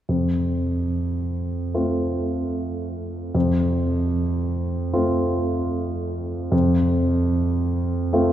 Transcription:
0.09 F2
1.74 A3 C4 F4
3.35 F2
4.93 A3 C4 F4
6.52 F2
8.13 A3 C4 F4

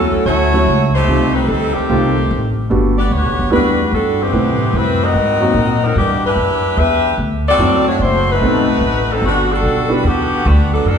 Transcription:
Already playing: F#3 A3 C#4 E4 F#4 A4
0.12 muted upright bass stroke
0.26 D2 A3 E4 F#4 C#5
0.53 F#3 A3 C#4 E4 F#4
0.67 C#2
0.95 A3 D#4 G4 C5
1.07 C2 G3 A3 C4 D#4 F4
1.34 G3 C4 D#4 B4
1.48 D2 G3 C4 D#4 A4
1.74 D#3 A3 C4 G4, muted upright bass stroke
1.89 C2 G3 A3 C4 D#4 F4
2.31 A1
2.70 G1 G3 A3 B3 D4 F#4
2.98 B3 F#4 G4 D5
3.11 D2 B3 F#4 G4 C#5
3.25 B1
3.39 G1
3.50 E2 G3 A3 B3 D4 E4 F#4 B4
3.54 D4
3.92 G2 G3 D4 F#4 A4
4.22 E3 B3 C4 G4
4.33 A2 C3 G3 A3 E4 B4
4.73 F#2 B4
4.77 G3 C4 E4
5.05 C4 F#4 A#4 D#5
5.14 G#2
5.41 F#3 A#3 C4 D#4 F#4
5.54 A#2
5.85 F#3 C4 D#4 A#4
5.96 G2 E3 B3 D4 G4
6.26 D4 E4 G4 B4
6.36 F#2
6.77 E2 D4 G4 B4 E5
7.18 D2
7.48 C4 F#4 A4 D5
7.58 F#2 F#3 A3 C4 E4 F#4
7.88 A3 D4 F#4 C#5
7.99 F#1
8.03 A3 E4 F#4 C5
8.31 A3 D#4 F#4 B4
8.40 B1 A3 B3 C4 D#4 A4
8.81 A1
9.12 F#3 C4 D#4 A4
9.22 G1
9.26 D3 G3 B3 F#4
9.53 G3 D4 F#4 A4
9.63 B1
9.88 G3 B3 D4 E4 F#4
9.93 G3 D4 F#4 B4
10.04 E2 D3 F#4
10.08 B3 G4
10.45 D2 D3 G3 B3 F#4
10.73 F#3 B3 D4 A4
10.85 F#2 E3 D4 A4 A#4

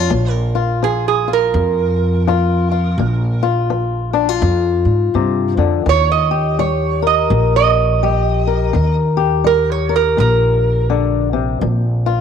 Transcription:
Already playing: F4 C#5
0.10 A#1 A#2
0.31 A#4
0.55 F4
0.83 F3 G#4
1.08 G#4
1.28 F4
1.33 A#4
1.54 F2
2.27 F3 F4
2.72 F4
2.98 A#1 A#2
3.43 F4
3.70 F3
4.13 D4
4.29 F4
4.42 F2
4.85 G#2
5.14 G2 C3
5.57 F2 D3
5.86 D#2 D#3 C#5
6.12 D#5
6.31 G4
6.59 G3 C#5
7.02 A#4
7.07 D#5
7.30 A#1 A#2
7.56 D#5
8.03 G3 G4
8.47 A#4
8.73 D#2 D#3
9.17 G4
9.44 G3 A#4
9.72 C#5
9.89 A#4
9.96 A#4
10.17 A#1 A#2 A#4
10.90 D3
11.33 C3
11.61 A#1 A#2
12.06 F4

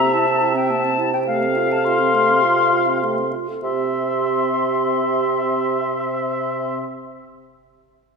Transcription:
Already playing: C3 G4 E5 A#5
0.00 C4
0.13 E4 A5
0.27 G4
0.41 E4
0.55 C4 G5
0.70 A#3 A5
0.84 C4
0.99 E4
1.13 G4 G5
1.27 A3 A4 F5
1.42 C4
1.56 F4
1.71 A4 A5
1.85 F4 C6
2.00 C4
2.14 A3
2.28 C4
2.43 F4
2.58 A4
2.73 F4
2.87 C4
3.03 A3 A4
3.18 C4
3.33 F4
3.48 A4
3.63 C3 C4 G4 E5 C6

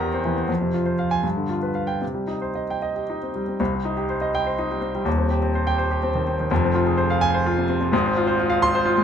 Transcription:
Already playing: E2 E3 G4 A#4 C5 G5 A#5
0.02 G4
0.13 C4
0.25 E3
0.37 C4
0.49 F2
0.61 C3
0.74 F4
0.86 C5
0.99 F5
1.11 G#5
1.23 G2
1.36 D3
1.49 F4
1.63 B4
1.75 F5
1.87 G5
2.02 C3
2.14 G3
2.27 D#4
2.42 C5
2.55 D#5
2.70 G5
2.82 D#5
2.96 G4
3.10 D#4
3.23 C4
3.36 G3
3.48 C4
3.60 C2 C3
3.74 C4
3.85 D#4
3.97 G4
4.10 C5
4.22 D#5
4.35 G5
4.46 C5
4.59 D#4
4.71 G3
4.81 C4
4.95 G3
5.05 D#1 D#2
5.18 C4
5.30 G4
5.42 C4
5.55 C5
5.67 G5
5.78 C5
5.91 G4
6.03 C4
6.15 D#3
6.27 C4
6.40 D#3
6.51 F1 F2
6.64 C4
6.75 F4
6.87 G#4
6.97 C5
7.10 F5
7.21 G#5
7.34 C5
7.46 F4
7.58 C3
7.69 C4
7.81 C3
7.92 G#1 G#2
8.06 C4
8.17 F4
8.27 C5
8.39 F4
8.50 F5
8.62 C6
8.75 C5
8.85 F4
8.97 G#3

